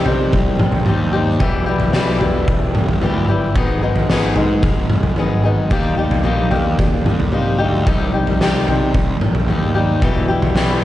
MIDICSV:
0, 0, Header, 1, 4, 480
1, 0, Start_track
1, 0, Key_signature, -3, "minor"
1, 0, Tempo, 538600
1, 1254, Time_signature, 4, 2, 24, 8
1, 9661, End_track
2, 0, Start_track
2, 0, Title_t, "Steel-string acoustic guitar"
2, 0, Program_c, 0, 25
2, 0, Note_on_c, 0, 48, 80
2, 0, Note_on_c, 0, 55, 88
2, 47, Note_on_c, 0, 67, 63
2, 66, Note_on_c, 0, 63, 56
2, 75, Note_on_c, 0, 60, 56
2, 292, Note_off_c, 0, 48, 0
2, 762, Note_off_c, 0, 55, 0
2, 765, Note_off_c, 0, 60, 0
2, 766, Note_on_c, 0, 55, 62
2, 771, Note_off_c, 0, 63, 0
2, 775, Note_on_c, 0, 60, 69
2, 781, Note_off_c, 0, 67, 0
2, 782, Note_on_c, 0, 63, 69
2, 792, Note_on_c, 0, 67, 71
2, 992, Note_off_c, 0, 67, 0
2, 1003, Note_on_c, 0, 67, 77
2, 1004, Note_off_c, 0, 63, 0
2, 1015, Note_off_c, 0, 60, 0
2, 1015, Note_on_c, 0, 63, 63
2, 1026, Note_on_c, 0, 60, 58
2, 1234, Note_off_c, 0, 67, 0
2, 1235, Note_off_c, 0, 55, 0
2, 1240, Note_off_c, 0, 63, 0
2, 1242, Note_on_c, 0, 40, 78
2, 1245, Note_off_c, 0, 60, 0
2, 1248, Note_on_c, 0, 47, 80
2, 1251, Note_on_c, 0, 52, 86
2, 1254, Note_on_c, 0, 55, 86
2, 1260, Note_on_c, 0, 64, 92
2, 1265, Note_on_c, 0, 67, 103
2, 1469, Note_off_c, 0, 67, 0
2, 1478, Note_off_c, 0, 64, 0
2, 1480, Note_on_c, 0, 67, 78
2, 1489, Note_off_c, 0, 55, 0
2, 1489, Note_on_c, 0, 64, 62
2, 1493, Note_off_c, 0, 52, 0
2, 1499, Note_on_c, 0, 55, 68
2, 1503, Note_on_c, 0, 52, 62
2, 1709, Note_off_c, 0, 40, 0
2, 1713, Note_off_c, 0, 47, 0
2, 1719, Note_on_c, 0, 40, 80
2, 1720, Note_off_c, 0, 52, 0
2, 1724, Note_on_c, 0, 47, 89
2, 1725, Note_off_c, 0, 55, 0
2, 1731, Note_on_c, 0, 52, 79
2, 1732, Note_off_c, 0, 64, 0
2, 1734, Note_off_c, 0, 67, 0
2, 1735, Note_on_c, 0, 55, 95
2, 1743, Note_on_c, 0, 64, 81
2, 1745, Note_on_c, 0, 67, 96
2, 1948, Note_off_c, 0, 67, 0
2, 1958, Note_off_c, 0, 64, 0
2, 1959, Note_on_c, 0, 67, 70
2, 1967, Note_off_c, 0, 55, 0
2, 1969, Note_on_c, 0, 64, 64
2, 1973, Note_off_c, 0, 52, 0
2, 1978, Note_on_c, 0, 55, 59
2, 1983, Note_on_c, 0, 52, 56
2, 2205, Note_off_c, 0, 40, 0
2, 2208, Note_off_c, 0, 47, 0
2, 2670, Note_off_c, 0, 52, 0
2, 2681, Note_on_c, 0, 52, 65
2, 2683, Note_off_c, 0, 55, 0
2, 2689, Note_off_c, 0, 64, 0
2, 2693, Note_on_c, 0, 55, 62
2, 2695, Note_off_c, 0, 67, 0
2, 2699, Note_on_c, 0, 64, 68
2, 2706, Note_on_c, 0, 67, 80
2, 2915, Note_off_c, 0, 67, 0
2, 2925, Note_off_c, 0, 64, 0
2, 2925, Note_on_c, 0, 67, 71
2, 2932, Note_off_c, 0, 55, 0
2, 2936, Note_on_c, 0, 64, 65
2, 2941, Note_off_c, 0, 52, 0
2, 2943, Note_on_c, 0, 55, 59
2, 2952, Note_on_c, 0, 52, 53
2, 3154, Note_off_c, 0, 67, 0
2, 3159, Note_off_c, 0, 64, 0
2, 3162, Note_off_c, 0, 55, 0
2, 3166, Note_on_c, 0, 44, 81
2, 3167, Note_off_c, 0, 52, 0
2, 3175, Note_on_c, 0, 51, 90
2, 3175, Note_on_c, 0, 56, 81
2, 3183, Note_on_c, 0, 59, 87
2, 3187, Note_on_c, 0, 63, 95
2, 3193, Note_on_c, 0, 68, 93
2, 3392, Note_off_c, 0, 68, 0
2, 3402, Note_on_c, 0, 68, 68
2, 3408, Note_off_c, 0, 59, 0
2, 3409, Note_off_c, 0, 63, 0
2, 3412, Note_on_c, 0, 63, 71
2, 3419, Note_on_c, 0, 59, 66
2, 3421, Note_off_c, 0, 56, 0
2, 3431, Note_on_c, 0, 56, 64
2, 3641, Note_off_c, 0, 44, 0
2, 3648, Note_off_c, 0, 51, 0
2, 3651, Note_on_c, 0, 44, 91
2, 3653, Note_off_c, 0, 56, 0
2, 3658, Note_on_c, 0, 51, 80
2, 3659, Note_off_c, 0, 59, 0
2, 3663, Note_on_c, 0, 56, 84
2, 3667, Note_off_c, 0, 68, 0
2, 3668, Note_off_c, 0, 63, 0
2, 3670, Note_on_c, 0, 59, 86
2, 3671, Note_on_c, 0, 63, 82
2, 3678, Note_on_c, 0, 68, 93
2, 3867, Note_off_c, 0, 68, 0
2, 3878, Note_on_c, 0, 68, 66
2, 3887, Note_off_c, 0, 59, 0
2, 3887, Note_off_c, 0, 63, 0
2, 3891, Note_on_c, 0, 63, 57
2, 3893, Note_off_c, 0, 56, 0
2, 3897, Note_on_c, 0, 59, 54
2, 3903, Note_on_c, 0, 56, 52
2, 4131, Note_off_c, 0, 44, 0
2, 4134, Note_off_c, 0, 51, 0
2, 4600, Note_off_c, 0, 56, 0
2, 4605, Note_off_c, 0, 59, 0
2, 4610, Note_on_c, 0, 56, 55
2, 4616, Note_on_c, 0, 59, 72
2, 4617, Note_off_c, 0, 68, 0
2, 4624, Note_off_c, 0, 63, 0
2, 4627, Note_on_c, 0, 63, 70
2, 4627, Note_on_c, 0, 68, 73
2, 4833, Note_off_c, 0, 68, 0
2, 4843, Note_on_c, 0, 68, 69
2, 4852, Note_off_c, 0, 63, 0
2, 4855, Note_off_c, 0, 59, 0
2, 4855, Note_on_c, 0, 63, 64
2, 4862, Note_off_c, 0, 56, 0
2, 4866, Note_on_c, 0, 59, 61
2, 4873, Note_on_c, 0, 56, 60
2, 5073, Note_off_c, 0, 68, 0
2, 5082, Note_on_c, 0, 51, 78
2, 5084, Note_off_c, 0, 59, 0
2, 5085, Note_off_c, 0, 56, 0
2, 5089, Note_on_c, 0, 55, 86
2, 5094, Note_on_c, 0, 58, 90
2, 5096, Note_off_c, 0, 63, 0
2, 5100, Note_on_c, 0, 63, 86
2, 5102, Note_on_c, 0, 67, 105
2, 5319, Note_off_c, 0, 67, 0
2, 5323, Note_on_c, 0, 67, 71
2, 5332, Note_off_c, 0, 63, 0
2, 5335, Note_off_c, 0, 58, 0
2, 5336, Note_on_c, 0, 63, 69
2, 5346, Note_on_c, 0, 58, 59
2, 5546, Note_off_c, 0, 51, 0
2, 5557, Note_on_c, 0, 51, 85
2, 5561, Note_off_c, 0, 58, 0
2, 5562, Note_off_c, 0, 55, 0
2, 5566, Note_on_c, 0, 55, 76
2, 5571, Note_on_c, 0, 58, 87
2, 5574, Note_off_c, 0, 63, 0
2, 5577, Note_off_c, 0, 67, 0
2, 5578, Note_on_c, 0, 63, 79
2, 5581, Note_on_c, 0, 67, 88
2, 5794, Note_off_c, 0, 67, 0
2, 5797, Note_on_c, 0, 67, 63
2, 5807, Note_off_c, 0, 63, 0
2, 5810, Note_on_c, 0, 63, 51
2, 5814, Note_off_c, 0, 58, 0
2, 5825, Note_on_c, 0, 58, 51
2, 6044, Note_off_c, 0, 51, 0
2, 6518, Note_off_c, 0, 55, 0
2, 6521, Note_off_c, 0, 58, 0
2, 6521, Note_on_c, 0, 55, 69
2, 6529, Note_off_c, 0, 63, 0
2, 6531, Note_on_c, 0, 58, 59
2, 6540, Note_on_c, 0, 63, 70
2, 6543, Note_off_c, 0, 67, 0
2, 6546, Note_on_c, 0, 67, 76
2, 6754, Note_off_c, 0, 67, 0
2, 6758, Note_on_c, 0, 67, 75
2, 6760, Note_off_c, 0, 63, 0
2, 6771, Note_on_c, 0, 63, 61
2, 6774, Note_off_c, 0, 58, 0
2, 6784, Note_on_c, 0, 58, 54
2, 6997, Note_off_c, 0, 63, 0
2, 7003, Note_on_c, 0, 48, 85
2, 7004, Note_off_c, 0, 58, 0
2, 7006, Note_off_c, 0, 55, 0
2, 7010, Note_on_c, 0, 51, 82
2, 7012, Note_on_c, 0, 55, 74
2, 7022, Note_off_c, 0, 67, 0
2, 7022, Note_on_c, 0, 63, 88
2, 7026, Note_on_c, 0, 67, 96
2, 7247, Note_off_c, 0, 67, 0
2, 7250, Note_on_c, 0, 67, 67
2, 7251, Note_off_c, 0, 63, 0
2, 7262, Note_on_c, 0, 63, 65
2, 7269, Note_off_c, 0, 55, 0
2, 7273, Note_on_c, 0, 55, 57
2, 7478, Note_off_c, 0, 48, 0
2, 7485, Note_off_c, 0, 51, 0
2, 7489, Note_on_c, 0, 48, 75
2, 7494, Note_off_c, 0, 55, 0
2, 7496, Note_on_c, 0, 51, 86
2, 7497, Note_off_c, 0, 63, 0
2, 7498, Note_on_c, 0, 55, 87
2, 7508, Note_on_c, 0, 63, 85
2, 7510, Note_off_c, 0, 67, 0
2, 7513, Note_on_c, 0, 67, 89
2, 7729, Note_off_c, 0, 67, 0
2, 7732, Note_on_c, 0, 67, 62
2, 7734, Note_off_c, 0, 63, 0
2, 7745, Note_on_c, 0, 63, 56
2, 7749, Note_off_c, 0, 55, 0
2, 7752, Note_on_c, 0, 55, 51
2, 7972, Note_off_c, 0, 48, 0
2, 7975, Note_off_c, 0, 51, 0
2, 8446, Note_off_c, 0, 55, 0
2, 8448, Note_on_c, 0, 51, 65
2, 8452, Note_off_c, 0, 63, 0
2, 8456, Note_on_c, 0, 55, 66
2, 8462, Note_off_c, 0, 67, 0
2, 8462, Note_on_c, 0, 63, 71
2, 8472, Note_on_c, 0, 67, 67
2, 8676, Note_off_c, 0, 67, 0
2, 8686, Note_on_c, 0, 67, 74
2, 8690, Note_off_c, 0, 63, 0
2, 8700, Note_off_c, 0, 55, 0
2, 8700, Note_on_c, 0, 63, 66
2, 8710, Note_on_c, 0, 55, 57
2, 8916, Note_off_c, 0, 67, 0
2, 8917, Note_off_c, 0, 51, 0
2, 8923, Note_off_c, 0, 63, 0
2, 8928, Note_off_c, 0, 55, 0
2, 8932, Note_on_c, 0, 40, 86
2, 8934, Note_on_c, 0, 47, 92
2, 8942, Note_on_c, 0, 52, 99
2, 8946, Note_on_c, 0, 55, 92
2, 8950, Note_on_c, 0, 64, 86
2, 8956, Note_on_c, 0, 67, 91
2, 9154, Note_off_c, 0, 67, 0
2, 9164, Note_on_c, 0, 67, 72
2, 9166, Note_off_c, 0, 64, 0
2, 9173, Note_off_c, 0, 55, 0
2, 9177, Note_on_c, 0, 64, 77
2, 9183, Note_off_c, 0, 52, 0
2, 9183, Note_on_c, 0, 55, 59
2, 9194, Note_on_c, 0, 52, 58
2, 9394, Note_off_c, 0, 40, 0
2, 9396, Note_off_c, 0, 47, 0
2, 9404, Note_off_c, 0, 52, 0
2, 9404, Note_on_c, 0, 40, 83
2, 9407, Note_off_c, 0, 55, 0
2, 9407, Note_on_c, 0, 47, 77
2, 9413, Note_off_c, 0, 64, 0
2, 9415, Note_on_c, 0, 52, 86
2, 9416, Note_off_c, 0, 67, 0
2, 9417, Note_on_c, 0, 55, 87
2, 9424, Note_on_c, 0, 64, 82
2, 9426, Note_on_c, 0, 67, 88
2, 9630, Note_off_c, 0, 67, 0
2, 9640, Note_off_c, 0, 64, 0
2, 9649, Note_off_c, 0, 55, 0
2, 9656, Note_off_c, 0, 52, 0
2, 9661, Note_off_c, 0, 40, 0
2, 9661, Note_off_c, 0, 47, 0
2, 9661, End_track
3, 0, Start_track
3, 0, Title_t, "Picked electric bass"
3, 0, Program_c, 1, 34
3, 53, Note_on_c, 1, 48, 80
3, 284, Note_off_c, 1, 48, 0
3, 296, Note_on_c, 1, 36, 83
3, 525, Note_off_c, 1, 36, 0
3, 535, Note_on_c, 1, 34, 81
3, 764, Note_off_c, 1, 34, 0
3, 781, Note_on_c, 1, 39, 87
3, 1236, Note_off_c, 1, 39, 0
3, 1255, Note_on_c, 1, 28, 82
3, 1483, Note_off_c, 1, 28, 0
3, 1487, Note_on_c, 1, 28, 66
3, 1719, Note_off_c, 1, 28, 0
3, 1726, Note_on_c, 1, 35, 81
3, 1958, Note_off_c, 1, 35, 0
3, 1978, Note_on_c, 1, 28, 80
3, 2204, Note_off_c, 1, 28, 0
3, 2210, Note_on_c, 1, 28, 77
3, 2440, Note_off_c, 1, 28, 0
3, 2450, Note_on_c, 1, 28, 75
3, 2680, Note_off_c, 1, 28, 0
3, 2692, Note_on_c, 1, 38, 81
3, 2921, Note_off_c, 1, 38, 0
3, 2925, Note_on_c, 1, 31, 75
3, 3170, Note_off_c, 1, 31, 0
3, 3170, Note_on_c, 1, 32, 88
3, 3400, Note_off_c, 1, 32, 0
3, 3411, Note_on_c, 1, 32, 81
3, 3640, Note_off_c, 1, 32, 0
3, 3648, Note_on_c, 1, 32, 88
3, 3879, Note_off_c, 1, 32, 0
3, 3882, Note_on_c, 1, 44, 86
3, 4116, Note_off_c, 1, 44, 0
3, 4128, Note_on_c, 1, 32, 81
3, 4359, Note_off_c, 1, 32, 0
3, 4367, Note_on_c, 1, 29, 80
3, 4594, Note_off_c, 1, 29, 0
3, 4599, Note_on_c, 1, 32, 87
3, 5064, Note_off_c, 1, 32, 0
3, 5089, Note_on_c, 1, 39, 86
3, 5310, Note_off_c, 1, 39, 0
3, 5315, Note_on_c, 1, 39, 78
3, 5552, Note_off_c, 1, 39, 0
3, 5558, Note_on_c, 1, 34, 83
3, 5794, Note_off_c, 1, 34, 0
3, 5800, Note_on_c, 1, 39, 81
3, 6035, Note_off_c, 1, 39, 0
3, 6052, Note_on_c, 1, 39, 73
3, 6281, Note_off_c, 1, 39, 0
3, 6289, Note_on_c, 1, 39, 86
3, 6518, Note_off_c, 1, 39, 0
3, 6523, Note_on_c, 1, 48, 76
3, 6757, Note_off_c, 1, 48, 0
3, 6769, Note_on_c, 1, 38, 75
3, 7000, Note_off_c, 1, 38, 0
3, 7012, Note_on_c, 1, 36, 83
3, 7242, Note_off_c, 1, 36, 0
3, 7253, Note_on_c, 1, 36, 83
3, 7483, Note_off_c, 1, 36, 0
3, 7495, Note_on_c, 1, 36, 85
3, 7720, Note_off_c, 1, 36, 0
3, 7725, Note_on_c, 1, 48, 77
3, 7959, Note_off_c, 1, 48, 0
3, 7974, Note_on_c, 1, 36, 80
3, 8192, Note_off_c, 1, 36, 0
3, 8198, Note_on_c, 1, 34, 74
3, 8435, Note_off_c, 1, 34, 0
3, 8446, Note_on_c, 1, 39, 78
3, 8910, Note_off_c, 1, 39, 0
3, 8932, Note_on_c, 1, 28, 87
3, 9161, Note_off_c, 1, 28, 0
3, 9166, Note_on_c, 1, 28, 67
3, 9400, Note_off_c, 1, 28, 0
3, 9407, Note_on_c, 1, 35, 86
3, 9641, Note_off_c, 1, 35, 0
3, 9661, End_track
4, 0, Start_track
4, 0, Title_t, "Drums"
4, 51, Note_on_c, 9, 43, 71
4, 141, Note_off_c, 9, 43, 0
4, 289, Note_on_c, 9, 43, 78
4, 296, Note_on_c, 9, 36, 94
4, 378, Note_off_c, 9, 43, 0
4, 385, Note_off_c, 9, 36, 0
4, 530, Note_on_c, 9, 47, 77
4, 619, Note_off_c, 9, 47, 0
4, 643, Note_on_c, 9, 43, 76
4, 732, Note_off_c, 9, 43, 0
4, 764, Note_on_c, 9, 47, 72
4, 853, Note_off_c, 9, 47, 0
4, 1248, Note_on_c, 9, 43, 82
4, 1251, Note_on_c, 9, 36, 101
4, 1337, Note_off_c, 9, 43, 0
4, 1340, Note_off_c, 9, 36, 0
4, 1601, Note_on_c, 9, 43, 75
4, 1691, Note_off_c, 9, 43, 0
4, 1722, Note_on_c, 9, 38, 65
4, 1812, Note_off_c, 9, 38, 0
4, 1969, Note_on_c, 9, 43, 76
4, 2058, Note_off_c, 9, 43, 0
4, 2209, Note_on_c, 9, 36, 104
4, 2209, Note_on_c, 9, 43, 89
4, 2298, Note_off_c, 9, 36, 0
4, 2298, Note_off_c, 9, 43, 0
4, 2448, Note_on_c, 9, 47, 82
4, 2537, Note_off_c, 9, 47, 0
4, 2571, Note_on_c, 9, 43, 80
4, 2660, Note_off_c, 9, 43, 0
4, 2687, Note_on_c, 9, 47, 72
4, 2776, Note_off_c, 9, 47, 0
4, 3169, Note_on_c, 9, 36, 99
4, 3170, Note_on_c, 9, 43, 78
4, 3258, Note_off_c, 9, 36, 0
4, 3259, Note_off_c, 9, 43, 0
4, 3526, Note_on_c, 9, 43, 74
4, 3615, Note_off_c, 9, 43, 0
4, 3650, Note_on_c, 9, 38, 76
4, 3740, Note_off_c, 9, 38, 0
4, 3883, Note_on_c, 9, 43, 76
4, 3973, Note_off_c, 9, 43, 0
4, 4124, Note_on_c, 9, 43, 89
4, 4126, Note_on_c, 9, 36, 110
4, 4213, Note_off_c, 9, 43, 0
4, 4215, Note_off_c, 9, 36, 0
4, 4363, Note_on_c, 9, 47, 84
4, 4452, Note_off_c, 9, 47, 0
4, 4484, Note_on_c, 9, 43, 79
4, 4573, Note_off_c, 9, 43, 0
4, 4600, Note_on_c, 9, 47, 75
4, 4689, Note_off_c, 9, 47, 0
4, 5087, Note_on_c, 9, 43, 78
4, 5089, Note_on_c, 9, 36, 109
4, 5176, Note_off_c, 9, 43, 0
4, 5178, Note_off_c, 9, 36, 0
4, 5447, Note_on_c, 9, 43, 84
4, 5536, Note_off_c, 9, 43, 0
4, 5805, Note_on_c, 9, 43, 70
4, 5894, Note_off_c, 9, 43, 0
4, 6047, Note_on_c, 9, 43, 78
4, 6050, Note_on_c, 9, 36, 91
4, 6136, Note_off_c, 9, 43, 0
4, 6139, Note_off_c, 9, 36, 0
4, 6291, Note_on_c, 9, 47, 77
4, 6380, Note_off_c, 9, 47, 0
4, 6414, Note_on_c, 9, 43, 76
4, 6503, Note_off_c, 9, 43, 0
4, 7012, Note_on_c, 9, 36, 102
4, 7014, Note_on_c, 9, 43, 83
4, 7101, Note_off_c, 9, 36, 0
4, 7103, Note_off_c, 9, 43, 0
4, 7372, Note_on_c, 9, 43, 71
4, 7461, Note_off_c, 9, 43, 0
4, 7495, Note_on_c, 9, 38, 67
4, 7584, Note_off_c, 9, 38, 0
4, 7736, Note_on_c, 9, 43, 73
4, 7825, Note_off_c, 9, 43, 0
4, 7970, Note_on_c, 9, 43, 86
4, 7972, Note_on_c, 9, 36, 104
4, 8059, Note_off_c, 9, 43, 0
4, 8061, Note_off_c, 9, 36, 0
4, 8211, Note_on_c, 9, 47, 75
4, 8300, Note_off_c, 9, 47, 0
4, 8331, Note_on_c, 9, 43, 78
4, 8420, Note_off_c, 9, 43, 0
4, 8449, Note_on_c, 9, 47, 69
4, 8538, Note_off_c, 9, 47, 0
4, 8931, Note_on_c, 9, 36, 106
4, 8931, Note_on_c, 9, 43, 80
4, 9020, Note_off_c, 9, 36, 0
4, 9020, Note_off_c, 9, 43, 0
4, 9290, Note_on_c, 9, 43, 76
4, 9379, Note_off_c, 9, 43, 0
4, 9407, Note_on_c, 9, 38, 76
4, 9496, Note_off_c, 9, 38, 0
4, 9661, End_track
0, 0, End_of_file